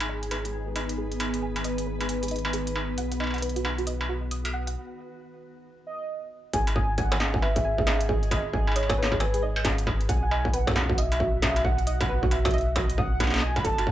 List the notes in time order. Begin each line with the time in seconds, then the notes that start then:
Already playing: G#1 D#3 B3 D#4 G#4 B4
0.00 G#5, closed hi-hat, struck metal
0.09 D#5
0.23 G#5, closed hi-hat
0.31 B4, closed hi-hat, struck metal
0.45 G#4, closed hi-hat
0.53 G#5
0.67 G#4
0.76 D#5, closed hi-hat, struck metal
0.89 closed hi-hat
0.98 G#4
1.12 closed hi-hat
1.20 D#6, closed hi-hat, struck metal
1.34 closed hi-hat
1.42 G#5
1.56 G#5, closed hi-hat, struck metal
1.64 D#5, closed hi-hat
1.78 G#5, closed hi-hat
1.87 B4
2.01 G#4, closed hi-hat, struck metal
2.09 G#5, closed hi-hat
2.23 G#4, closed hi-hat
2.28 closed hi-hat
2.31 D#5, closed hi-hat
2.36 closed hi-hat
2.39 closed hi-hat
2.45 struck metal
2.53 G#4, closed hi-hat
2.67 closed hi-hat
2.76 D#6, struck metal
2.98 B1 F#5, closed hi-hat
3.12 F#5, closed hi-hat
3.20 D#5, struck metal
3.24 struck metal
3.27 struck metal
3.31 F#5, closed hi-hat, struck metal
3.34 struck metal
3.36 closed hi-hat, struck metal
3.38 struck metal
3.40 B4, closed hi-hat, struck metal
3.49 F#4, closed hi-hat
3.56 F#4, closed hi-hat
3.65 F#5, struck metal
3.78 F#4, closed hi-hat
3.87 D#5, closed hi-hat
4.01 struck metal
4.09 F#4
4.31 D#6, closed hi-hat
4.45 closed hi-hat, struck metal
4.53 F#5
4.67 F#5, closed hi-hat
5.87 D#5
6.53 G#1 G#4 G#5, kick, closed hi-hat
6.67 closed hi-hat, struck metal
6.76 D#6, kick
6.86 G#4
6.98 F#5 G#5, kick, closed hi-hat
7.12 G#5, closed hi-hat, struck metal
7.20 D#5, snare
7.34 G#5, kick
7.42 B4 E5, struck metal
7.56 G#4, kick, closed hi-hat
7.65 G#5
7.78 G#4, kick
7.87 D#5, snare, closed hi-hat, struck metal
8.01 closed hi-hat
8.09 G#4 D#5, kick
8.23 closed hi-hat
8.31 D#6, kick, closed hi-hat, struck metal
8.53 G#5, kick
8.67 G#5, struck metal
8.72 struck metal
8.76 C#5 D#5, closed hi-hat, struck metal
8.83 struck metal
8.89 G#5, kick, closed hi-hat, struck metal
8.98 B4
9.03 snare
9.05 snare
9.12 G#4, kick, struck metal
9.20 B4 G#5, closed hi-hat, struck metal
9.34 G#4, closed hi-hat
9.42 D#5
9.56 struck metal
9.65 G#4, kick, snare, closed hi-hat
9.78 closed hi-hat
9.87 D#6, kick, struck metal
10.01 closed hi-hat
10.09 B1 F#5 G#5, kick, closed hi-hat
10.23 F#5
10.31 D#5, struck metal
10.39 F#4
10.45 F#5, kick
10.54 B4 F#5, closed hi-hat
10.67 F#4, kick, closed hi-hat, struck metal
10.69 kick
10.71 kick
10.74 kick
10.76 F#5, kick, snare, struck metal
10.79 kick
10.83 kick
10.86 kick
10.90 F#4, kick
10.98 D#5 E5, closed hi-hat
11.12 closed hi-hat, struck metal
11.20 F#4, kick
11.42 D#6, kick, snare, closed hi-hat
11.56 closed hi-hat, struck metal
11.64 F#5, kick
11.78 F#5, closed hi-hat
11.87 D#5, closed hi-hat
12.01 F#5, kick, closed hi-hat, struck metal
12.09 B4
12.23 F#4, kick
12.31 E5 F#5, closed hi-hat, struck metal
12.45 F#4, kick, closed hi-hat, struck metal
12.51 D#5, closed hi-hat
12.54 closed hi-hat
12.58 closed hi-hat
12.61 closed hi-hat
12.76 F#4 D#5, kick, closed hi-hat, struck metal
12.90 closed hi-hat
12.98 F#5 D#6, kick
13.20 F#5, kick, snare, closed hi-hat, struck metal
13.24 snare
13.27 snare
13.30 snare
13.34 F#5, snare, closed hi-hat
13.36 snare
13.38 snare
13.40 D#5 G#5, snare
13.56 F#5 B5, kick, closed hi-hat, struck metal
13.65 F#1 F#3 A4 A5, kick, closed hi-hat
13.78 F#4, closed hi-hat, struck metal
13.87 F#5, kick